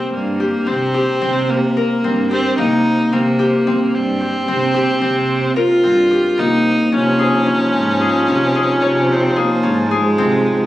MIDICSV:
0, 0, Header, 1, 5, 480
1, 0, Start_track
1, 0, Tempo, 544465
1, 1074, Time_signature, 7, 3, 24, 8
1, 9400, End_track
2, 0, Start_track
2, 0, Title_t, "Harmonium"
2, 0, Program_c, 0, 20
2, 6121, Note_on_c, 0, 53, 52
2, 6124, Note_on_c, 0, 65, 50
2, 6130, Note_on_c, 0, 63, 58
2, 9400, Note_off_c, 0, 53, 0
2, 9400, Note_off_c, 0, 63, 0
2, 9400, Note_off_c, 0, 65, 0
2, 9400, End_track
3, 0, Start_track
3, 0, Title_t, "Harp"
3, 0, Program_c, 1, 46
3, 0, Note_on_c, 1, 58, 72
3, 0, Note_on_c, 1, 60, 55
3, 0, Note_on_c, 1, 67, 57
3, 349, Note_off_c, 1, 67, 0
3, 352, Note_on_c, 1, 67, 60
3, 583, Note_off_c, 1, 60, 0
3, 587, Note_on_c, 1, 60, 68
3, 827, Note_off_c, 1, 67, 0
3, 830, Note_on_c, 1, 67, 66
3, 1068, Note_off_c, 1, 60, 0
3, 1072, Note_on_c, 1, 60, 76
3, 1558, Note_on_c, 1, 70, 59
3, 1753, Note_off_c, 1, 58, 0
3, 1796, Note_off_c, 1, 60, 0
3, 1800, Note_on_c, 1, 60, 68
3, 2031, Note_off_c, 1, 67, 0
3, 2035, Note_on_c, 1, 67, 62
3, 2274, Note_on_c, 1, 58, 76
3, 2752, Note_off_c, 1, 60, 0
3, 2755, Note_on_c, 1, 60, 76
3, 2985, Note_off_c, 1, 67, 0
3, 2988, Note_on_c, 1, 67, 72
3, 3231, Note_off_c, 1, 60, 0
3, 3235, Note_on_c, 1, 60, 71
3, 3428, Note_off_c, 1, 70, 0
3, 3706, Note_off_c, 1, 67, 0
3, 3710, Note_on_c, 1, 67, 53
3, 3946, Note_off_c, 1, 60, 0
3, 3949, Note_on_c, 1, 60, 70
3, 4176, Note_off_c, 1, 67, 0
3, 4180, Note_on_c, 1, 67, 73
3, 4418, Note_off_c, 1, 60, 0
3, 4421, Note_on_c, 1, 60, 78
3, 4903, Note_on_c, 1, 70, 61
3, 5108, Note_off_c, 1, 58, 0
3, 5141, Note_off_c, 1, 60, 0
3, 5145, Note_on_c, 1, 60, 73
3, 5381, Note_off_c, 1, 67, 0
3, 5385, Note_on_c, 1, 67, 61
3, 5621, Note_on_c, 1, 58, 71
3, 6102, Note_on_c, 1, 61, 79
3, 6155, Note_off_c, 1, 60, 0
3, 6337, Note_on_c, 1, 68, 65
3, 6390, Note_off_c, 1, 67, 0
3, 6575, Note_off_c, 1, 61, 0
3, 6579, Note_on_c, 1, 61, 62
3, 6773, Note_off_c, 1, 70, 0
3, 7057, Note_off_c, 1, 68, 0
3, 7060, Note_on_c, 1, 68, 59
3, 7297, Note_off_c, 1, 61, 0
3, 7301, Note_on_c, 1, 61, 71
3, 7534, Note_off_c, 1, 68, 0
3, 7538, Note_on_c, 1, 68, 65
3, 7774, Note_on_c, 1, 73, 82
3, 8251, Note_off_c, 1, 68, 0
3, 8255, Note_on_c, 1, 68, 58
3, 8455, Note_off_c, 1, 58, 0
3, 8488, Note_off_c, 1, 61, 0
3, 8491, Note_on_c, 1, 61, 74
3, 8734, Note_off_c, 1, 68, 0
3, 8737, Note_on_c, 1, 68, 60
3, 8976, Note_on_c, 1, 60, 77
3, 9029, Note_off_c, 1, 61, 0
3, 9029, Note_off_c, 1, 73, 0
3, 9400, Note_off_c, 1, 60, 0
3, 9400, Note_off_c, 1, 68, 0
3, 9400, End_track
4, 0, Start_track
4, 0, Title_t, "Viola"
4, 0, Program_c, 2, 41
4, 0, Note_on_c, 2, 60, 67
4, 115, Note_off_c, 2, 60, 0
4, 125, Note_on_c, 2, 58, 67
4, 596, Note_on_c, 2, 60, 80
4, 609, Note_off_c, 2, 58, 0
4, 1317, Note_on_c, 2, 58, 79
4, 1330, Note_off_c, 2, 60, 0
4, 2035, Note_off_c, 2, 58, 0
4, 2047, Note_on_c, 2, 60, 82
4, 2264, Note_off_c, 2, 60, 0
4, 2285, Note_on_c, 2, 63, 84
4, 2755, Note_on_c, 2, 58, 78
4, 2768, Note_off_c, 2, 63, 0
4, 3482, Note_on_c, 2, 60, 84
4, 3495, Note_off_c, 2, 58, 0
4, 4905, Note_off_c, 2, 60, 0
4, 4910, Note_on_c, 2, 65, 99
4, 5639, Note_on_c, 2, 63, 91
4, 5653, Note_off_c, 2, 65, 0
4, 6116, Note_on_c, 2, 61, 83
4, 6129, Note_off_c, 2, 63, 0
4, 8045, Note_on_c, 2, 60, 77
4, 8059, Note_off_c, 2, 61, 0
4, 8278, Note_on_c, 2, 58, 85
4, 8291, Note_off_c, 2, 60, 0
4, 8745, Note_on_c, 2, 56, 94
4, 8758, Note_off_c, 2, 58, 0
4, 9400, Note_off_c, 2, 56, 0
4, 9400, End_track
5, 0, Start_track
5, 0, Title_t, "Cello"
5, 0, Program_c, 3, 42
5, 110, Note_on_c, 3, 43, 77
5, 486, Note_off_c, 3, 43, 0
5, 591, Note_on_c, 3, 48, 72
5, 966, Note_off_c, 3, 48, 0
5, 1072, Note_on_c, 3, 48, 83
5, 1635, Note_off_c, 3, 48, 0
5, 1789, Note_on_c, 3, 43, 78
5, 2165, Note_off_c, 3, 43, 0
5, 2273, Note_on_c, 3, 48, 74
5, 2648, Note_off_c, 3, 48, 0
5, 2753, Note_on_c, 3, 48, 89
5, 3315, Note_off_c, 3, 48, 0
5, 3475, Note_on_c, 3, 43, 79
5, 3849, Note_off_c, 3, 43, 0
5, 3954, Note_on_c, 3, 48, 72
5, 4328, Note_off_c, 3, 48, 0
5, 4436, Note_on_c, 3, 48, 86
5, 4997, Note_off_c, 3, 48, 0
5, 5148, Note_on_c, 3, 43, 77
5, 5524, Note_off_c, 3, 43, 0
5, 5630, Note_on_c, 3, 48, 66
5, 6005, Note_off_c, 3, 48, 0
5, 6109, Note_on_c, 3, 48, 86
5, 6672, Note_off_c, 3, 48, 0
5, 6823, Note_on_c, 3, 44, 80
5, 7201, Note_off_c, 3, 44, 0
5, 7299, Note_on_c, 3, 48, 71
5, 7678, Note_off_c, 3, 48, 0
5, 7780, Note_on_c, 3, 48, 88
5, 8346, Note_off_c, 3, 48, 0
5, 8502, Note_on_c, 3, 44, 85
5, 8880, Note_off_c, 3, 44, 0
5, 8987, Note_on_c, 3, 48, 75
5, 9362, Note_off_c, 3, 48, 0
5, 9400, End_track
0, 0, End_of_file